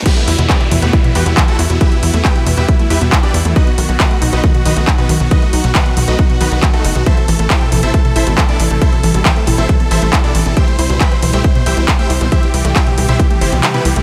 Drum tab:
CC |x---------------|----------------|----------------|----------------|
HH |xxoxxxoxxxoxxxox|xxoxxxoxxxoxxxox|xxoxxxoxxxoxxxox|xxoxxxoxxxoxxxox|
CP |----x-------x---|----x-------x---|----x-------x---|----x-------x---|
T2 |------oo-o------|------o---------|------oo-o------|------o---------|
BD |o---o---o---o---|o---o---o---o---|o---o---o---o---|o---o---o---o---|

CC |----------------|----------------|----------------|----------------|
HH |xxoxxxoxxxoxxxox|xxoxxxoxxxoxxxox|xxoxxxoxxxoxxxox|xxoxxxoxxxoxxxox|
CP |----x-------x---|----x-------x---|----x-------x---|----x-------x---|
T2 |------oo-o------|------o---------|------oo-o------|------oo--------|
BD |o---o---o---o---|o---o---o---o---|o---o---o---o---|o---o---o-------|